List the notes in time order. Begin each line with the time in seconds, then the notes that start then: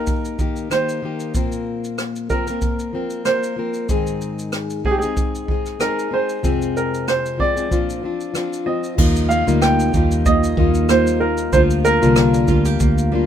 Already playing: A#3 D#4 G4 A#4
0.07 kick, shaker
0.25 shaker
0.38 D#3 A#3 D#4 G4, kick, shaker
0.56 shaker
0.70 D#3 A#3 D#4 G4 C5, cross-stick, shaker
0.89 shaker
1.02 D#3 A#3 D#4 G4
1.20 shaker
1.34 A#2 F3 A#3 C4 A#4, kick, shaker
1.52 shaker
1.84 shaker
1.98 cross-stick, shaker
2.16 shaker
2.30 F3 A#3 C4 A#4, kick, shaker
2.47 A#3 C4 A#4, shaker
2.62 kick, shaker
2.79 shaker
2.93 F3 A#3 C4 A#4
3.10 shaker
3.25 F3 A#3 C4 A#4 C5, cross-stick, shaker
3.43 shaker
3.56 F3 A#3 C4 A#4
3.74 shaker
3.89 G#2 D#3 G#3 C4 D#4 G#4, kick, shaker
4.07 shaker
4.21 shaker
4.39 shaker
4.52 cross-stick, shaker
4.70 shaker
4.84 G#3 C4 D#4 G#4, kick
4.91 G4
4.98 G#4, shaker
5.03 G#3 C4 D#4 G#4
5.17 kick, shaker
5.35 shaker
5.48 G#3 C4 D#4 G#4, kick
5.66 cross-stick, shaker
5.80 G#3 C4 D#4 G#4 A#4, cross-stick, shaker
5.99 shaker
6.11 G#3 C4 D#4 G#4 C5
6.29 shaker
6.43 F2 C3 F3 G#3 C4 G#4, kick, shaker
6.62 shaker
6.77 A#4, shaker
6.94 shaker
7.08 C5, cross-stick, shaker
7.26 shaker
7.37 F3 G#3 C4 G#4 D5, kick
7.56 F3 G#3 C4 G#4, shaker
7.71 A#2 F3 C4 D4 F4, kick, shaker
7.90 shaker
8.03 F3 C4 D4 F4
8.21 shaker
8.34 F3 C4 D4 F4, cross-stick, shaker
8.53 shaker
8.66 F3 C4 F4 D#5
8.84 shaker
8.97 D#2 F3 G3 A#3 D#4 F4, kick, crash
9.16 shaker
9.29 A#3 F5, shaker
9.47 D2 G3 A#3 D#4 F4, shaker
9.62 D#4 G5, cross-stick, shaker
9.80 shaker
9.94 D#2 G3 A#3 D#4 F4 G4, kick, shaker
10.11 shaker
10.26 A#3 D#5, kick, shaker
10.44 shaker
10.57 D#2 G3 A#3 D#4 F4, kick
10.74 shaker
10.89 G3 A#3 D#4 F4 C5, cross-stick, shaker
11.07 shaker
11.20 D#4 A#4
11.38 shaker
11.52 D2 F3 G3 A#3 D4 F4 C5, kick, shaker
11.70 shaker
11.85 A#3 A#4, shaker
12.02 C2 D3 G3 A#3 D4 F4, shaker
12.16 D4, cross-stick, shaker
12.34 shaker
12.48 D2 G3 A#3 D4 F4, kick, shaker
12.65 G4, shaker
12.80 D2 A#3, kick, shaker
12.98 shaker
13.12 G3 A#3 D4 F4